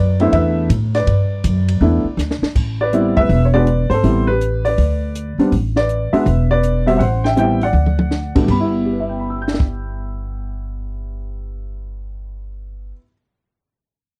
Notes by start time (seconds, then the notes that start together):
Already playing: F#2 B4 D5
0.20 A3 B3 D4 E4 C5 E5, ride
0.32 E2 B4 E5, kick, ride
0.69 A2, kick, hi-hat pedal, ride
0.95 B4 D5, snare, ride
1.07 G2, kick, ride
1.44 F#2, kick, hi-hat pedal, ride
1.68 ride
1.81 E2 A3 B3 D4 E4, kick
2.04 muted upright bass stroke
2.17 D2, snare, hi-hat pedal
2.31 snare
2.42 muted upright bass stroke, snare
2.55 A1, kick, crash
2.81 B4 D5
2.93 G3 B3 C4 E4, closed hi-hat
3.17 F1 B4 E5, kick
3.29 E1, kick, open hi-hat
3.45 C#5
3.54 G#3 B3 D4 F#4 B4 D5
3.67 closed hi-hat
3.90 G#1 A4 C5, open hi-hat
4.03 A1 G3 B3 C4 E4, kick, open hi-hat
4.27 G4 B4
4.41 closed hi-hat
4.65 B4 D5, open hi-hat
4.78 D2, kick, open hi-hat
5.15 closed hi-hat
5.38 G3 B3 C4 D4, muted upright bass stroke, open hi-hat
5.52 A1, kick, open hi-hat
5.76 B4 D5, snare
5.89 closed hi-hat
6.13 G#3 B3 D4 F#4 B4 E5, muted upright bass stroke, open hi-hat
6.26 E1, kick, open hi-hat
6.51 B4 D5
6.63 closed hi-hat
6.86 G3 B3 C4 F#4 C5 E5, open hi-hat
6.97 A1 C5 E5 F#5, kick, open hi-hat
7.24 E5 G5, snare
7.36 G3 B3 C4 E4 E5 G5, closed hi-hat
7.61 D5 F#5, open hi-hat
7.73 D2, mid tom
7.86 mid tom
7.99 mid tom
8.11 snare
8.35 A1 G2 A3 B3 D4 F#4, kick, crash
8.44 G3
8.48 G1 B5, kick, crash
8.52 B3
8.60 E4
8.85 G4
8.92 B4
9.00 E5
9.09 G5
9.20 B5
9.30 E6
9.42 G6
9.48 snare
9.54 snare
9.60 kick